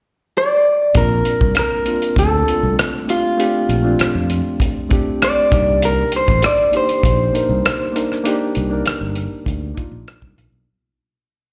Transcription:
0.38 0.97 D5 medium
0.94 1.20 A#1 medium
0.94 1.73 A#3 medium
0.94 1.74 C4 medium
0.94 1.74 D4 medium
0.94 1.75 F4 medium
0.94 1.53 A#4 medium
0.94 kick loud
0.94 closed hi-hat medium
1.25 closed hi-hat medium
1.41 1.54 C2 medium
1.41 kick medium
1.55 cross-stick medium
1.55 closed hi-hat medium
1.59 2.19 A#4 medium
1.85 2.38 A#3 medium
1.85 2.39 C4 medium
1.85 2.39 D4 medium
1.85 2.40 F4 medium
1.85 closed hi-hat medium
2.02 closed hi-hat medium
2.16 2.42 D2 medium
2.16 2.75 A4 medium
2.16 kick medium
2.16 closed hi-hat medium
2.46 2.99 A3 medium
2.46 2.99 C4 soft
2.46 3.00 D4 soft
2.46 3.01 F4 medium
2.46 closed hi-hat medium
2.63 2.76 C2 medium
2.79 cross-stick loud
2.79 closed hi-hat medium
3.06 3.33 A3 medium
3.06 3.34 C4 soft
3.06 3.34 D4 soft
3.06 3.35 G4 medium
3.06 closed hi-hat medium
3.10 4.88 F4 medium
3.37 3.77 A3 medium
3.37 3.77 C4 medium
3.37 3.78 D4 medium
3.37 3.79 G4 medium
3.37 closed hi-hat medium
3.69 3.94 A#1 medium
3.69 closed hi-hat medium
3.82 4.75 A3 medium
3.82 4.76 C4 medium
3.82 4.76 D4 medium
3.82 4.77 F4 medium
3.99 muted fingered electric bass stroke soft
3.99 cross-stick loud
3.99 closed hi-hat medium
4.15 4.40 F2 medium
4.30 closed hi-hat medium
4.60 kick medium
4.60 closed hi-hat medium
4.89 5.51 A3 medium
4.89 5.51 C4 medium
4.89 5.50 D4 medium
4.89 5.52 G4 medium
4.89 kick medium
4.89 closed hi-hat medium
5.22 5.85 D5 loud
5.22 cross-stick medium
5.22 closed hi-hat medium
5.50 6.03 C2 medium
5.50 6.56 A#3 medium
5.50 6.56 D4 medium
5.50 6.56 D#4 medium
5.50 6.57 G4 medium
5.50 kick loud
5.50 closed hi-hat medium
5.82 6.12 A#4 medium
5.82 closed hi-hat loud
6.12 closed hi-hat medium
6.16 6.46 C5 medium
6.28 6.41 A1 medium
6.28 kick medium
6.28 closed hi-hat soft
6.42 6.76 D5 medium
6.42 cross-stick loud
6.42 closed hi-hat medium
6.72 7.25 A#3 medium
6.72 7.25 D4 medium
6.72 7.26 D#4 medium
6.72 7.26 G4 medium
6.72 closed hi-hat medium
6.77 10.05 C5 medium
6.89 closed hi-hat medium
7.03 7.29 A#1 medium
7.03 kick medium
7.03 closed hi-hat medium
7.32 7.85 A#3 medium
7.32 7.86 D4 soft
7.32 7.86 D#4 medium
7.32 7.87 A#4 medium
7.32 closed hi-hat medium
7.49 7.62 C2 medium
7.66 cross-stick medium
7.66 closed hi-hat medium
7.92 8.20 A#3 medium
7.92 8.20 D4 medium
7.92 8.21 D#4 medium
7.92 8.21 A#4 medium
7.92 closed hi-hat medium
8.12 cross-stick soft
8.24 8.64 A#3 medium
8.24 8.64 D4 medium
8.24 8.65 D#4 medium
8.24 8.65 G4 loud
8.24 closed hi-hat medium
8.55 8.81 C2 medium
8.55 closed hi-hat medium
8.70 9.61 A#3 medium
8.70 9.62 D4 medium
8.70 9.62 D#4 medium
8.70 9.63 A#4 medium
8.86 muted fingered electric bass stroke soft
8.86 cross-stick loud
8.86 closed hi-hat medium
9.01 9.26 G1 medium
9.15 closed hi-hat medium
9.46 9.71 D2 medium
9.46 kick medium
9.46 closed hi-hat medium
9.74 10.54 A#3 medium
9.74 10.54 D4 medium
9.74 10.55 D#4 medium
9.74 10.55 F4 medium
9.74 kick medium
9.74 closed hi-hat medium
9.92 10.04 A#1 medium
10.08 cross-stick loud
10.08 closed hi-hat medium
10.22 10.35 C2 medium
10.22 kick medium
10.38 10.50 A#1 medium
10.38 closed hi-hat medium
10.52 10.65 B1 medium

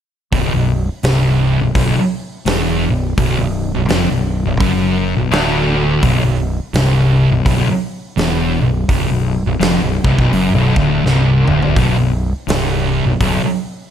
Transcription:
0.33 0.53 B0 medium
0.33 0.53 B1 loud
0.33 kick loud
0.33 open hi-hat medium
0.54 0.87 B0 medium
0.54 0.85 B1 medium
1.03 1.57 C1 medium
1.03 1.61 C2 loud
1.03 snare loud
1.03 open hi-hat medium
1.62 1.74 B0 medium
1.62 1.74 B1 medium
1.75 1.95 B0 medium
1.75 1.96 B1 loud
1.75 kick loud
1.75 open hi-hat medium
1.97 muted fingered electric bass stroke soft
1.97 muted distorted electric guitar stroke medium
2.46 2.87 E1 medium
2.46 2.89 E2 loud
2.46 snare loud
2.46 open hi-hat medium
2.90 3.16 B0 medium
2.90 3.12 B1 medium
3.17 3.38 B0 loud
3.17 3.38 B1 loud
3.17 kick loud
3.17 open hi-hat medium
3.39 3.73 B0 medium
3.39 3.69 B1 medium
3.74 3.88 B0 medium
3.74 3.88 B1 medium
3.88 4.09 F1 medium
3.88 4.09 F2 loud
3.88 snare loud
3.88 open hi-hat medium
4.11 4.44 B0 medium
4.11 4.41 B1 medium
4.45 4.60 B0 medium
4.45 4.60 B1 medium
4.60 5.14 F#1 medium
4.60 5.16 F#2 loud
4.60 kick loud
4.60 open hi-hat soft
5.17 5.31 B0 medium
5.17 5.31 B1 medium
5.31 5.99 D1 medium
5.31 6.02 D2 medium
5.31 snare loud
5.31 open hi-hat medium
6.03 6.23 B0 loud
6.03 6.23 B1 loud
6.03 kick loud
6.03 open hi-hat medium
6.24 6.58 B0 medium
6.24 6.55 B1 medium
6.73 7.27 C1 medium
6.73 7.32 C2 loud
6.73 snare loud
6.73 open hi-hat medium
7.31 7.44 B0 medium
7.31 7.46 B1 medium
7.45 7.66 B0 medium
7.45 7.67 B1 loud
7.45 kick loud
7.45 open hi-hat medium
7.68 muted fingered electric bass stroke soft
7.68 muted distorted electric guitar stroke medium
8.17 8.58 E1 medium
8.17 8.60 E2 loud
8.17 snare loud
8.17 open hi-hat medium
8.61 8.87 B0 medium
8.61 8.84 B1 medium
8.88 9.09 B0 medium
8.88 9.10 B1 loud
8.88 kick loud
8.88 open hi-hat medium
9.10 9.44 B0 medium
9.10 9.41 B1 medium
9.47 9.59 B0 medium
9.47 9.60 B1 medium
9.60 9.80 F1 loud
9.60 9.81 F2 loud
9.60 snare loud
9.60 open hi-hat medium
9.82 10.03 B0 medium
9.82 10.04 B1 medium
10.04 10.17 C1 medium
10.04 10.17 C2 loud
10.04 kick loud
10.18 10.31 B0 medium
10.18 10.31 B1 medium
10.18 kick loud
10.32 10.52 F#1 medium
10.32 10.54 F#2 loud
10.32 open hi-hat medium
10.53 10.74 B0 medium
10.53 10.75 B1 medium
10.76 11.02 D1 medium
10.76 11.04 D2 loud
10.76 kick loud
11.04 11.45 C1 medium
11.04 11.47 C2 loud
11.04 snare medium
11.48 11.74 D1 medium
11.48 11.76 D2 medium
11.48 mid tom medium
11.62 floor tom medium
11.76 11.97 B0 loud
11.76 11.97 B1 loud
11.76 kick loud
11.76 open hi-hat medium
11.97 12.31 B0 medium
11.97 12.29 B1 medium
12.48 13.02 C1 medium
12.48 13.05 C2 loud
12.48 snare loud
12.48 open hi-hat medium
13.05 13.19 B0 medium
13.05 13.19 B1 medium
13.20 13.41 B0 medium
13.20 13.41 B1 loud
13.20 kick loud
13.20 open hi-hat medium
13.43 muted fingered electric bass stroke soft
13.43 muted distorted electric guitar stroke medium

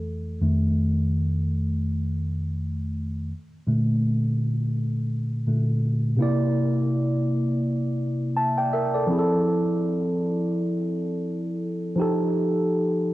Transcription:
0.41 3.26 F2 medium
0.41 3.27 D#3 medium
0.41 3.27 A3 medium
3.67 4.71 A#2 medium
3.67 4.71 D3 soft
3.67 4.72 A3 medium
5.47 5.80 A#2 soft
5.47 5.80 D3 soft
5.47 5.80 A3 medium
6.17 9.03 C3 medium
6.17 9.04 A#3 medium
6.17 9.05 E4 medium
6.23 8.34 D5 medium
8.37 8.57 E5 medium
8.37 8.56 A5 medium
8.58 8.72 D5 medium
8.58 8.72 G5 medium
8.73 8.93 A#4 medium
8.73 8.93 E5 medium
8.94 9.18 A4 medium
8.94 9.28 D5 medium
9.07 11.93 F3 medium
9.07 11.94 C4 medium
9.07 11.95 E4 medium
9.12 9.18 G#4 medium
9.19 11.99 A4 medium
11.96 13.14 F3 medium
11.96 13.14 D#4 medium
11.96 13.14 G4 medium
12.01 13.14 A4 medium

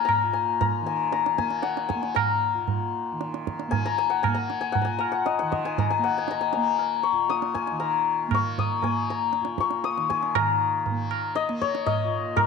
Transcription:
0.00 0.22 A#2 medium
0.00 0.80 D#3 medium
0.00 1.38 A#3 medium
0.00 0.13 F#5 medium
0.00 0.33 G#5 medium
0.05 0.60 A#5 medium
0.05 tabla na medium
0.05 tabla ge medium
0.23 2.53 A#2 medium
0.33 0.86 G#5 medium
0.61 1.12 A#5 medium
0.61 tabla tin medium
0.61 tabla ge medium
0.81 3.11 D#3 medium
0.86 1.38 G#5 medium
1.12 2.14 A#5 medium
1.12 tabla te medium
1.26 tabla te medium
1.38 1.95 A#3 medium
1.38 1.88 G#5 medium
1.38 tabla ke medium
1.50 tabla te medium
1.62 3.76 F#5 medium
1.62 tabla te medium
1.77 tabla te medium
1.89 3.70 G#5 medium
1.89 tabla ke medium
1.95 3.68 A#3 medium
2.03 tabla te medium
2.15 3.85 A#5 medium
2.15 tabla na medium
2.15 tabla ge medium
2.54 4.84 A#2 medium
2.68 tabla tin medium
2.68 tabla ge medium
3.12 5.41 D#3 medium
3.21 tabla te medium
3.34 tabla te medium
3.47 tabla ke medium
3.59 tabla te medium
3.68 4.27 A#3 medium
3.68 3.98 G#5 loud
3.72 tabla tin medium
3.72 tabla ge medium
3.86 4.34 A#5 medium
3.98 4.23 G#5 medium
4.10 4.72 F#5 medium
4.23 4.60 G#5 medium
4.23 tabla na medium
4.23 tabla ge medium
4.27 5.99 A#3 medium
4.35 4.81 A#5 medium
4.50 tabla te medium
4.61 4.84 G#5 medium
4.72 5.11 F#5 medium
4.72 tabla tin medium
4.72 tabla ge medium
4.81 7.12 A#2 medium
4.81 5.65 G#5 medium
4.81 4.98 A#5 medium
4.99 5.78 A#5 medium
4.99 tabla na medium
5.12 5.39 F#5 medium
5.26 5.51 D#5 medium
5.26 tabla te medium
5.39 7.70 D#3 medium
5.39 6.03 F#5 medium
5.39 tabla te medium
5.52 7.90 D#5 medium
5.52 tabla ke medium
5.65 5.90 G#5 medium
5.65 tabla te medium
5.78 6.30 A#5 medium
5.78 tabla tin medium
5.78 tabla ge medium
5.90 6.17 G#5 medium
5.99 6.57 A#3 medium
6.04 8.17 F#5 medium
6.18 6.40 G#5 medium
6.28 6.53 A#5 medium
6.28 tabla te medium
6.41 7.54 G#5 medium
6.53 7.79 A#5 medium
6.53 tabla te medium
6.57 8.28 A#3 medium
6.79 tabla tin medium
7.03 8.34 C#6 medium
7.12 9.41 A#2 medium
7.29 8.58 D#6 medium
7.29 tabla te medium
7.42 tabla te medium
7.54 8.83 G#5 medium
7.54 tabla ke medium
7.67 9.96 D#3 medium
7.67 tabla te medium
7.80 9.10 A#5 medium
7.80 tabla tin medium
8.28 8.84 A#3 medium
8.28 tabla na medium
8.28 tabla ge medium
8.35 9.60 C#6 medium
8.58 9.84 D#6 medium
8.58 tabla ge medium
8.82 10.91 A#3 medium
8.82 10.09 G#5 medium
8.82 tabla tin medium
8.82 tabla ge medium
9.10 10.35 A#5 medium
9.33 tabla te medium
9.41 12.04 A#2 medium
9.41 tabla te medium
9.58 11.28 C#6 medium
9.58 tabla ke medium
9.71 tabla te medium
9.84 11.41 D#6 medium
9.84 tabla te medium
9.96 10.36 D#3 medium
9.96 tabla te medium
10.10 12.08 G#5 medium
10.10 tabla ke medium
10.23 tabla te medium
10.35 12.47 D#3 medium
10.35 12.22 A#5 medium
10.35 tabla na loud
10.35 tabla ge medium
10.86 tabla tin medium
10.86 tabla ge medium
10.91 11.49 A#3 medium
11.11 tabla na medium
11.35 11.86 D#5 loud
11.35 tabla te medium
11.49 12.47 A#3 medium
11.49 tabla te medium
11.62 12.47 C#5 medium
11.62 tabla ke medium
11.75 tabla te medium
11.86 12.47 D#5 loud
11.86 tabla tin medium
11.86 tabla ge medium
12.04 12.47 A#2 medium
12.36 12.47 A#4 loud
12.36 tabla na medium
12.36 tabla ge medium

